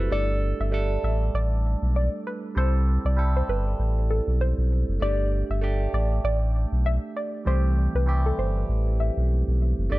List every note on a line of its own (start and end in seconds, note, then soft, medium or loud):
0.00 0.10 G3 medium
0.00 0.13 C4 medium
0.00 0.28 E4 medium
0.00 0.13 F#4 medium
0.00 0.14 G4 medium
0.00 0.13 A4 medium
0.00 0.14 B4 medium
0.00 0.13 C5 medium
0.10 0.53 G1 loud
0.10 0.54 G3 medium
0.10 0.55 A3 medium
0.10 0.55 D4 medium
0.10 0.56 A4 medium
0.10 0.38 D5 loud
0.60 0.98 G1 loud
0.60 0.71 E5 medium
0.71 1.57 G3 medium
0.71 1.57 A3 medium
0.71 1.58 D4 medium
0.71 1.58 A4 medium
1.03 1.30 A1 loud
1.03 1.19 E5 medium
1.34 1.76 A1 loud
1.34 1.80 D5 loud
1.82 2.09 B1 loud
1.96 2.11 D5 medium
2.27 2.41 B4 medium
2.55 2.98 C2 loud
2.55 2.99 G3 medium
2.55 3.00 C4 medium
2.55 3.00 E4 medium
2.55 3.00 A4 medium
2.55 2.83 C5 loud
3.05 3.42 C2 loud
3.05 3.16 D5 medium
3.16 4.02 G3 medium
3.16 4.02 C4 medium
3.16 4.03 E4 medium
3.16 4.03 A4 medium
3.37 3.47 C5 medium
3.48 3.75 G1 medium
3.48 3.64 B4 medium
3.79 4.21 A1 loud
4.10 4.25 A4 medium
4.27 4.54 B1 medium
4.41 4.86 C5 medium
4.58 4.84 B1 medium
4.88 5.00 F#1 medium
5.00 5.43 G1 loud
5.00 5.44 A3 medium
5.00 5.45 D4 medium
5.00 5.45 G4 medium
5.00 5.28 D5 loud
5.50 5.87 G1 medium
5.50 5.61 E5 medium
5.61 6.47 A3 medium
5.61 6.47 D4 medium
5.61 6.48 G4 medium
5.93 6.20 A1 medium
5.93 6.09 D5 medium
6.24 6.66 A1 loud
6.24 6.70 D5 loud
6.72 6.99 B1 loud
6.86 7.01 E5 medium
7.17 7.31 D5 medium
7.45 7.88 C2 loud
7.45 7.89 E3 medium
7.45 7.89 G3 medium
7.45 7.90 A3 medium
7.45 7.90 C4 medium
7.45 7.90 G4 medium
7.45 7.73 C5 loud
7.94 8.32 C2 loud
7.94 8.06 B4 medium
8.06 8.92 E3 medium
8.06 8.92 G3 medium
8.06 8.92 A3 medium
8.06 8.93 C4 medium
8.06 8.93 G4 medium
8.26 8.37 A4 medium
8.38 8.65 G1 medium
8.38 8.54 C5 medium
8.69 9.11 A1 loud
9.00 9.15 E5 medium
9.17 9.44 B1 medium
9.48 9.74 B1 medium
9.78 9.89 F#1 loud
9.90 9.99 G1 loud
9.90 9.99 A3 medium
9.90 9.99 D4 medium
9.90 9.99 G4 medium
9.90 9.99 D5 loud